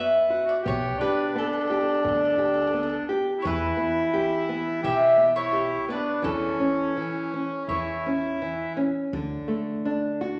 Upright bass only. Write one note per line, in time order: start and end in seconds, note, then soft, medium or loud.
0.00 0.17 F#2 medium
0.66 0.89 B1 loud
2.04 2.96 D2 medium
3.45 3.68 E2 loud
4.84 5.75 B1 medium
6.24 6.47 E2 medium
7.68 8.63 E2 medium
9.13 9.36 D2 medium